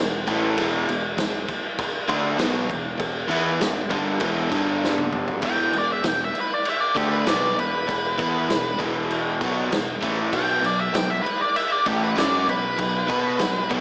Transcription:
Already playing: E1
0.00 E2 B2
0.27 A1 A2 E3 A3, kick, crash
0.57 E1 E2 B2 E3, kick, crash
0.88 E1 E2 B2, crash
1.18 E1 E2 B2, snare, crash
1.48 muted picked electric bass stroke, muted overdriven electric guitar stroke, kick, crash
1.78 kick, crash
2.08 D2 D3 A3 D4, kick, crash
2.38 B1 B2 F#3 B3, snare, crash
2.68 E1 E2 B2, kick, crash
2.97 E1 E2 B2, kick, crash
3.28 E2 E3 B3 E4, crash
3.60 E1 E2 B2, snare, crash
3.90 G1 G2 D3 G3, kick, crash
4.20 E1 E2 B2 E3, kick, crash
4.50 G1 G2 D3 G3, kick, crash
4.84 snare
4.98 high tom
5.12 mid tom
5.28 floor tom
5.42 E1 E2 B2 E3 G5, kick, crash
5.73 E1 E2 B2, crash
5.78 D5
5.92 E5
6.04 E1 E2 B2, snare, crash
6.08 G5
6.24 E5
6.35 muted overdriven electric guitar stroke, muted picked electric bass stroke, crash
6.40 B4
6.54 D5
6.65 E5, crash
6.80 D5
6.95 D2 D3 A3 D4 G4, kick, crash
7.12 B4
7.25 B1 B2 F#3 B3 D5, snare, crash
7.55 E1 E2 B2, crash
7.59 B4
7.87 E1 E2 B2, kick, crash
8.18 E2 E3 B3 E4, kick, crash
8.48 E1 E2 B2, snare, crash
8.78 E1 E2 B2 E3, kick, crash
9.11 crash
9.40 B1 B2 F#3 B3, kick, crash
9.70 E1 E2 B2, snare, crash
10.01 A1 A2 E3 A3, kick, crash
10.32 B1 B2 F#3 B3 G5, kick, crash
10.61 B1 B2 F#3, crash
10.66 D5
10.80 E5
10.93 B1 B2 F#3 G5, snare, crash
11.10 E5
11.23 B4, muted picked electric bass stroke, muted overdriven electric guitar stroke, crash
11.41 D5
11.56 E5, crash
11.72 D5
11.86 A1 A2 E3 A3 G4, kick, crash
12.03 B4
12.16 F#2 F#3 C#4 F#4 D5, snare, crash
12.47 B1 B2 F#3 B4, crash
12.78 B1 B2 F#3, kick, crash
13.08 B2 B3 F#4 B4, kick, crash
13.38 B1 B2 F#3, snare, crash
13.69 B1 B2 F#3 B3, kick, crash

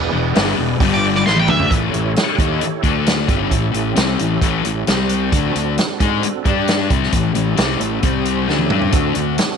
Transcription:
Already playing: E1 E4 G#4 B4 D5
0.13 E1 E2 B2
0.34 G1 G2 D3 G3, snare, open hi-hat
0.58 E1 E2 B2
0.79 G1 G2 D3 G3 D4 G4 D5 G5, kick, open hi-hat
0.94 D6
1.15 D6, snare
1.25 A1 A2 E3 A3 E4 G#4 B4 D5 C6, snare
1.36 G5, high tom
1.48 D2 D3 A3 D4 E5, mid tom
1.59 floor tom
1.70 A1 A2 E3 A3 F4 G#4 A#4 D5, kick, closed hi-hat
1.87 E4 G4 A4 C#5
1.93 A1 A2 E3, closed hi-hat
2.16 snare, closed hi-hat
2.38 D#2 D#3 A#3 D#4, kick, closed hi-hat
2.61 muted distorted electric guitar stroke, muted fingered electric bass stroke, closed hi-hat
2.83 D2 D3 A3 D4 A4 D5, kick, closed hi-hat
3.06 snare, closed hi-hat
3.27 G1 G2 D3 G3 C#4 E4 G4 A4, kick, closed hi-hat
3.50 A1 A2 E3, kick, closed hi-hat
3.72 A1 A2 E3, closed hi-hat
3.96 C2 C3 G3 C4, snare, closed hi-hat
4.19 A1 A2 E3, closed hi-hat
4.42 A1 A2 E3 A3, kick, closed hi-hat
4.64 A1 A2 E3, closed hi-hat
4.87 C2 C3 G3 C4 G4 C5, snare, closed hi-hat
5.09 closed hi-hat
5.32 D2 D3 A3 C4 D4 F#4 A4, kick, closed hi-hat
5.55 D2 D3 A3, closed hi-hat
5.78 snare, closed hi-hat
6.00 G#2 G#3 D#4 G#4, kick, closed hi-hat
6.23 muted fingered electric bass stroke, muted distorted electric guitar stroke, closed hi-hat
6.45 G2 G3 D4 G4 D5, kick, closed hi-hat
6.68 snare, closed hi-hat
6.90 C2 C3 G3 C4, kick, closed hi-hat
7.03 snare
7.12 A1 A2 E3 C#4 E4 G4 A4, kick, closed hi-hat
7.35 A1 A2 E3, closed hi-hat
7.56 C2 C3 G3 C4, snare, closed hi-hat
7.79 A1 A2 E3, closed hi-hat
8.03 C2 C3 G3 C4 G4 C5, kick, closed hi-hat
8.25 closed hi-hat
8.47 D2 D3 A3 C#4 D4 E4 G4 A4, snare
8.59 high tom
8.70 G2 G3 D4 G4, mid tom
8.82 floor tom
8.91 D2 D3 A3 C4 D4 F#4 A4, kick, closed hi-hat
9.15 D2 D3 A3, closed hi-hat
9.38 snare, closed hi-hat

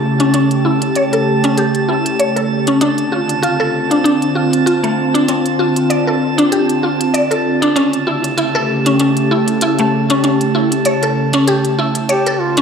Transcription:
Already playing: C#3 A3 G4 A5
0.20 C#4, closed hi-hat
0.34 C#4, closed hi-hat
0.51 closed hi-hat
0.65 E4
0.82 closed hi-hat
0.95 C#5, closed hi-hat
1.13 A4, closed hi-hat
1.44 C#4, closed hi-hat
1.58 G4, closed hi-hat
1.75 closed hi-hat
1.88 E4
2.06 closed hi-hat
2.19 C#5, closed hi-hat
2.36 A4, closed hi-hat
2.67 C#4, closed hi-hat
2.81 D3 C4 D4 F4, closed hi-hat
2.98 closed hi-hat
3.12 F4
3.29 closed hi-hat
3.42 F4, closed hi-hat
3.60 A4
3.91 D4, closed hi-hat
4.04 D4, closed hi-hat
4.22 closed hi-hat
4.35 F4
4.53 closed hi-hat
4.66 F4, closed hi-hat
4.83 A3, closed hi-hat
5.14 D4, closed hi-hat
5.28 C4, closed hi-hat
5.46 closed hi-hat
5.59 F4
5.76 closed hi-hat
5.90 D5, closed hi-hat
6.07 A4
6.38 D4, closed hi-hat
6.52 G4, closed hi-hat
6.69 closed hi-hat
6.83 F4
7.01 closed hi-hat
7.14 D5, closed hi-hat
7.31 A4, closed hi-hat
7.62 D4, closed hi-hat
7.76 C#3 A3 C#4 G4, closed hi-hat
7.93 closed hi-hat
8.07 E4
8.24 closed hi-hat
8.37 E4, closed hi-hat
8.55 A4
8.86 C#4, closed hi-hat
9.00 C#4, closed hi-hat
9.17 closed hi-hat
9.31 E4
9.48 closed hi-hat
9.61 E4, closed hi-hat
9.79 A3, closed hi-hat
10.10 C#4, closed hi-hat
10.24 C#4, closed hi-hat
10.41 closed hi-hat
10.55 E4
10.72 closed hi-hat
10.85 C#5, closed hi-hat
11.03 A4, closed hi-hat
11.33 C#4, closed hi-hat
11.48 G4, closed hi-hat
11.65 closed hi-hat
11.79 E4
11.95 closed hi-hat
12.09 G4 C#5, closed hi-hat
12.26 A4, closed hi-hat
12.33 G4
12.40 F4
12.57 C#4, closed hi-hat

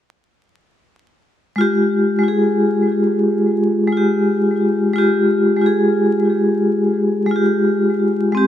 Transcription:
1.56 G#3 F4
1.61 G4
2.19 G#3
2.24 F4
2.28 G#4
3.88 G#3
3.92 F4
3.97 G4
4.93 G#3 F4
4.98 G4
5.56 G#3
5.61 F4
5.66 G#4
7.26 G#3
7.31 F4
7.36 G4
8.32 G#3 C4
8.37 G4

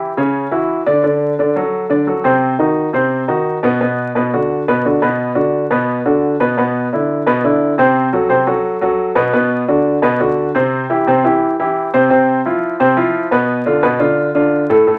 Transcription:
Already playing: E3 E4 G4
0.17 C#3 C#4 C#5
0.51 E3 E4 F#4
0.86 D3 D4 D5
1.04 D3 D4 D5
1.39 D3 D4 D5
1.56 F#3 F#4 A4
1.90 D3 D4 D5
2.07 F#3 F#4 A4
2.24 C3 C4 C5
2.59 D#3 D#4 F#4
2.93 C3 C4 C5
3.28 D#3 D#4 F#4
3.63 B2 B3 B4
3.81 B2 B3 B4
4.15 B2 B3 B4
4.33 D3 D4 F#4
4.68 B2 B3 B4
4.85 D3 D4 F#4
5.02 B2 B3 B4
5.35 D3 D4 F#4
5.71 B2 B3 B4
6.05 D3 D4 F#4
6.40 B2 B3 B4
6.57 B2 B3 B4
6.93 D3 D4 E4
7.27 B2 B3 B4
7.44 D3 D4 E4
7.78 C3 C4 C5
8.13 F#3 F#4 A4
8.29 C3 C4 C5
8.47 F#3 F#4 A4
8.81 F#3 F#4 A4
9.15 B2 B3 B4
9.33 B2 B3 B4
9.68 D3 D4 F#4
10.02 B2 B3 B4
10.20 D3 D4 F#4
10.55 C3 C4 C5
10.90 E3 E4 G4
11.07 C3 C4 C5
11.24 E3 E4 G4
11.60 E3 E4 G4
11.94 C3 C4 C5
12.10 C3 C4 C5
12.45 F3 E4 F4
12.80 C3 C4 C5
12.97 F3 E4 F4
13.31 B2 B3 B4
13.66 D3 D4 F4
13.83 B2 B3 B4
13.99 D3 D4 F4
14.35 D3 D4 F4
14.70 A2 A3 A4
14.87 A2 A3 A4

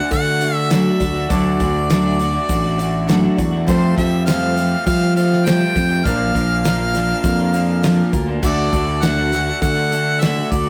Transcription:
Already playing: D3 D4 F#4 A4 D5 F#5
0.00 A3
0.11 D3 A3 D4 F#4 D5 F#5, kick, open hi-hat, shaker
0.26 A3 D4 F#4
0.40 D3 A3 D4 F#4 D5, open hi-hat, shaker
0.55 E5
0.70 D3 F#3 A3 D4 F#4 D5 E5, snare, open hi-hat, shaker
0.85 A3 D4 F#4
1.00 D2 A3 D4 F#4 D5, muted clean electric guitar stroke, kick, open hi-hat, shaker
1.14 A3 D4 F#4
1.29 D2 D3 F#3 A3 D4 F#4 A4 D5, kick, open hi-hat, shaker
1.59 D2 D3 A3 D4 F#4 D5, kick, open hi-hat, shaker
1.88 D3 F#3 A3 D4 F#4 D5, snare, open hi-hat, shaker
2.04 A3 D4 F#4
2.17 D3 A3 D4 F#4 D5, open hi-hat, shaker
2.22 A3 D4
2.32 A3 D4 F#4
2.49 A1 A3 D4 F#4 D5, kick, open hi-hat, shaker
2.62 A3 D4 F#4
2.77 D3 A3 D4 F#4 D5, open hi-hat, shaker
3.07 D3 F#3 A3 D4 F#4 D5, snare, open hi-hat, shaker
3.21 A3 D4 F#4
3.37 E2 A3 D4 F#4 D5, muted clean electric guitar stroke, kick, open hi-hat, shaker
3.51 A3 D4 F#4
3.66 F2 F3 G3 A3 C4 F4 G4 A4 C5, kick, open hi-hat, shaker
3.96 F2 F3 A3 C4 F4 G4 C5 E5, kick, open hi-hat, shaker
4.25 F3 G3 A3 C4 F4 C5 F5, snare, open hi-hat, shaker
4.30 G4
4.41 A3 C4 G4
4.55 F3 A3 C4 F4 C5, open hi-hat, shaker
4.60 G4
4.71 A3 C4 G4
4.85 F3 G3 A3 F4 C5 F5, kick, open hi-hat, shaker
5.01 A3 C4 G4
5.16 F3 A3 C4 F4 C5 F5, open hi-hat, shaker
5.20 G4
5.33 snare
5.44 F3 G3 A3 C4 F4 G4 C5 G5, snare, open hi-hat, shaker
5.60 A3 C4 G4
5.75 F2 A3 F4 C5, muted clean electric guitar stroke, kick, open hi-hat, shaker
5.89 A3 C4 G4
6.05 A#1 A#2 F3 A#3 D4 F4 A#4 D5 F5, kick, open hi-hat, shaker
6.34 A#1 F3 A#3 D4 F4 A#4, kick, open hi-hat, shaker
6.64 A#2 F3 A#3 D4 F4 A#4, snare, open hi-hat, shaker
6.78 A#3 D4 F4
6.92 F3 A#3 D4 F4 A#4, snare, open hi-hat, shaker
7.08 A#3 D4 F4
7.24 F2 A#3 D4 F4 A#4, kick, open hi-hat, shaker
7.39 A#3 D4 F4
7.52 F3 A#3 D4 F4 A#4, open hi-hat, shaker
7.82 A#2 F3 A#3 D4 F4 A#4, snare, open hi-hat, shaker
7.97 A#3 D4 F4
8.12 D2 A#3 D4 F4 A#4, muted clean electric guitar stroke, kick, open hi-hat, shaker
8.27 A#3 D4 F4
8.42 D2 D3 A3 D4 F#4 A4 D5, kick, crash, shaker
8.72 D2 D3 A3 D4 F#4 A4, kick, open hi-hat, shaker
9.02 D3 A3 D4 F#4 A4 F#5, snare, open hi-hat, shaker
9.17 A3 D4 F#4
9.31 D3 A3 D4 F#4 A4, snare, open hi-hat, shaker
9.45 A3 D4 F#4
9.62 D3 A3 D4 F#4 A4 F#5, kick, open hi-hat, shaker
9.75 A3 D4 F#4
9.91 D3 A3 D4 F#4 A4, open hi-hat, shaker
10.21 D3 A3 D4 F#4 A4 E5, snare, open hi-hat, shaker
10.35 A3 D4 F#4
10.51 D2 D4 F#4 A4 D5, muted clean electric guitar stroke, kick, open hi-hat, shaker
10.66 F#4

